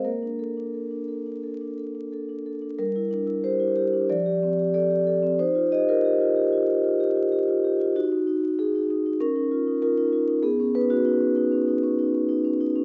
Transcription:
\new Staff \with { instrumentName = "Vibraphone" } { \time 4/4 \key c \dorian \tempo 4 = 94 << { bes'2. r4 | \key ees \lydian bes'4 c''4 d''4 d''4 | c''8 ees''16 bes'2.~ bes'16 | fis'4 aes'4 ais'4 ais'4 |
aes'8 b'16 fis'2.~ fis'16 | } \\ { bes16 d'16 a'16 d'16 a'16 d'16 a'16 d'16 a'16 d'16 a'16 d'16 a'16 d'16 a'16 d'16 | g16 e'16 d'16 e'16 g'16 e'16 g'16 d'16 f16 g'16 c'16 g'16 a'16 g'16 a'16 c'16 | ees'16 f'16 g'16 f'16 g'16 f'16 g'16 f'16 g'16 f'16 g'16 f'16 g'16 f'16 g'16 f'16 | ees'16 ees'16 ees'16 ees'16 ees'16 ees'16 ees'16 ees'16 cis'16 dis'16 eis'16 dis'16 eis'16 dis'16 eis'16 dis'16 |
b16 cis'16 dis'16 cis'16 dis'16 cis'16 dis'16 cis'16 dis'16 cis'16 dis'16 cis'16 dis'16 cis'16 dis'16 cis'16 | } >> }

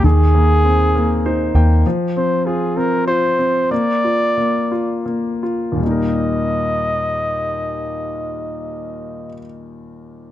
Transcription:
<<
  \new Staff \with { instrumentName = "Flugelhorn" } { \time 6/8 \key ees \major \tempo 4. = 58 aes'2~ aes'8 r8 | r8 c''8 aes'8 bes'8 c''4 | d''2 r4 | ees''2.~ |
ees''2. | }
  \new Staff \with { instrumentName = "Grand piano" } { \time 6/8 \key ees \major ees8 bes8 c'8 bes8 <ees' c''>8 <bes g''>8 | f8 c'8 f'8 c'8 f'8 c'8 | bes8 f'8 bes8 f'8 bes8 f'8 | <ees, bes, g bes ees' bes'>2.~ |
<ees, bes, g bes ees' bes'>2. | }
  \new Staff \with { instrumentName = "Fingered electric bass" } { \clef bass \time 6/8 \key ees \major ees,2~ ees,8 ees,8 | r2. | r2. | r2. |
r2. | }
>>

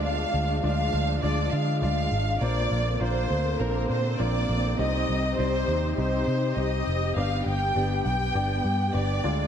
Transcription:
<<
  \new Staff \with { instrumentName = "Violin section" } { \time 4/4 \key g \phrygian \tempo 4 = 101 f''4 f''4 d''8 f''8 f''4 | d''4 c''4 bes'8 c''8 d''4 | ees''4 c''4 c''4 ees''4 | f''8 g''4 g''4. d''4 | }
  \new Staff \with { instrumentName = "Grand piano" } { \time 4/4 \key g \phrygian <aes d' f' d''>8 r8 <aes d' f' d''>4 <aes d' f' d''>4 <aes d' f' d''>4 | <bes d' f' c''>4 <bes d' f' c''>4 <bes d' f' c''>4 <bes d' f' d''>4 | <c' ees' g' ees''>4 <c' ees' g' d''>4 <c' ees' g' ees''>4 <c' ees' g' c''>4 | <b d' g' d''>4 <b d' g' d''>4 <b d' g' d''>4 <b d' g' d''>8 <aes d' f' d''>8 | }
  \new Staff \with { instrumentName = "Grand piano" } { \clef bass \time 4/4 \key g \phrygian d4 r2. | bes,4. r2 r8 | c4. r2 r8 | g,4. r2 d8 | }
  \new Staff \with { instrumentName = "String section" } { \time 4/4 \key g \phrygian << { d'1 | c'1 | g'1~ | g'2.~ g'8 f'8 | } \\ { <f aes>1 | <d bes>1 | <c ees'>1 | b2.~ b8 aes8 | } >> }
  \new Staff \with { instrumentName = "Picked electric bass" } { \clef bass \time 4/4 \key g \phrygian d,8 d,8 d,8 d,8 d,8 d8 d,8 aes,,8 | bes,,8 bes,,8 bes,,8 d,8 bes,,8 bes,8 bes,,8 bes,,8 | c,8 c,8 c,8 ees,8 c,8 c8 c,8 f,,8 | g,,8 g,,8 g,,8 b,,8 g,,8 g,8 g,,8 d,8 | }
>>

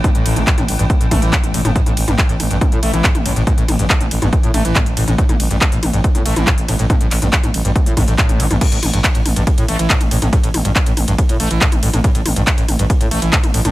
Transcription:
<<
  \new Staff \with { instrumentName = "Synth drone" } { \clef bass \time 4/4 \key c \major \tempo 4 = 140 <a, e>1~ | <a, e>1~ | <a, e>1~ | <a, e>1~ |
<a, e>1 | r1 | r1 | r1 | }
  \new Staff \with { instrumentName = "Acid bass" } { \clef bass \time 4/4 \key c \major a,16 a,8 c'16 r16 a,16 r16 g,16 r16 a,16 a16 e16 g,16 r16 a,16 a,16 | a,16 a,16 r16 g,16 r16 a,16 r16 g,16 r16 a,16 a16 e16 g,16 r16 a,16 a,16 | a,16 a,16 r16 g,16 r16 a,16 r16 g,16 r16 a,16 a16 e16 g,16 r16 a,16 a,16 | a,16 a,16 r16 g,16 r16 a,16 r16 g,16 r16 a,16 a16 e16 g,16 r16 a,16 a,16 |
a,16 a,16 r16 g,16 r16 a,16 r16 g,16 r16 a,16 a,16 a,16 a,8 e16 g,16 | a,16 a,16 r16 g,16 r16 a,16 r16 g,16 r16 a,16 a16 e16 g,16 r16 a,16 a,16 | a,16 a,16 r16 g,16 r16 a,16 r16 g,16 r16 a,16 a16 e16 g,16 r16 a,16 a,16 | a,16 a,16 r16 g,16 r16 a,16 r16 g,16 r16 a,16 a16 e16 g,16 r16 a,16 a,16 | }
  \new Staff \with { instrumentName = "FM bass" } { \clef bass \time 4/4 \key c \major r16 a,,16 a,,16 a,,16 r16 a,,16 a,,16 a,,16 r16 a,,16 a,,16 a,,16 r16 a,,16 a,,16 g,,16 | r16 a,,16 a,,16 a,,16 r16 a,,16 a,,16 a,,16 r16 a,16 a,,16 a,,16 r16 a,,16 a,,16 a,,16 | r16 a,,16 a,,16 a,,16 r16 a,,16 a,,16 a,,16 r16 a,16 a,,16 a,,16 r16 a,,16 a,,16 a,,16 | r16 a,,16 a,,16 a,,16 r16 a,,16 a,,16 a,,16 r16 a,16 a,,16 a,,16 r16 a,,16 a,,16 a,,16 |
r16 a,,16 a,,16 a,,16 r16 a,,16 a,,16 a,,16 r16 a,16 a,,16 a,,16 r16 a,,16 a,,16 a,,16 | r16 a,,16 a,,16 a,,16 r16 a,,16 a,,16 a,,16 r16 a,16 a,,16 a,,16 r16 a,,16 a,,16 a,,16 | r16 a,,16 a,,16 a,,16 r16 a,,16 a,,16 a,,16 r16 a,16 a,,16 a,,16 r16 a,,16 a,,16 a,,16 | r16 a,,16 a,,16 a,,16 r16 a,,16 a,,16 a,,16 r16 a,16 a,,16 a,,16 r16 a,,16 a,,16 a,,16 | }
  \new DrumStaff \with { instrumentName = "Drums" } \drummode { \time 4/4 <hh bd toml>16 hh16 <hho cymr>16 <hh toml>16 <hc hh bd>16 <hh toml>16 <hho cymr>16 hh16 <hh bd toml>16 hh16 <hho bd cymr toml>16 hh16 <hc hh bd>16 <hh toml>16 <hho cymr>16 <hh toml>16 | <hh bd>16 <hh toml>16 <hho cymr>16 <hh toml>16 <hc hh bd>16 hh16 <hho cymr toml>16 hh16 <hh bd toml>16 hh16 <hho cymr>16 <hh toml>16 <hc hh bd>16 <hh toml>16 <hho cymr>16 hh16 | <hh bd toml>16 hh16 <hho cymr toml>16 hh16 <hc hh bd>16 <hh toml>16 <hho cymr>16 <hh toml>16 <hh bd>16 hh16 <hho cymr toml>16 hh16 <hc hh bd toml>16 hh16 <hho cymr>16 <hh toml>16 | <hh bd>16 <hh toml>16 <hho cymr>16 hh16 <hc hh bd toml>16 hh16 <hho cymr toml>16 hh16 <hh bd>16 <hh toml>16 <hho cymr>16 <hh toml>16 <hc hh bd>16 hh16 <hho cymr toml>16 hh16 |
<hh bd toml>16 hh16 <hc hho cymr>16 <hh toml>16 <hc hh bd>16 <hh toml>16 <hho cymr>16 hh16 <hh bd toml>16 hh16 <hho bd cymr toml>16 hh16 <hc hh bd>16 <hh toml>16 <hho cymr>16 <hh toml>16 | <cymc hh bd cymr>16 <hh cymr>16 <hho cymr toml>16 <hh cymr>16 <hc hh bd cymr>16 <hh cymr>16 <hho cymr toml>16 <hh cymr>16 <hh bd cymr>16 <hh cymr>16 <hho cymr>16 <hh cymr>16 <hc hh bd cymr>16 <hh cymr toml>16 <hho cymr>16 <hh cymr toml>16 | <hh bd cymr>16 <hh cymr>16 <hho cymr toml>16 <hh cymr>16 <hc hh bd cymr>16 <hh cymr>16 <hho cymr toml>16 <hh cymr>16 <hh bd cymr>16 <hh cymr>16 <hho cymr>16 <hh cymr>16 <hc hh bd cymr>16 <hh cymr toml>16 <hho cymr>16 <hh cymr toml>16 | <hh bd cymr>16 <hh cymr>16 <hho cymr toml>16 <hh cymr>16 <hc hh bd cymr>16 <hh cymr>16 <hho cymr toml>16 <hh cymr>16 <hh bd cymr>16 <hh cymr>16 <hho cymr>16 <hh cymr>16 <hc hh bd cymr>16 <hh cymr toml>16 <hho cymr>16 <hh cymr toml>16 | }
>>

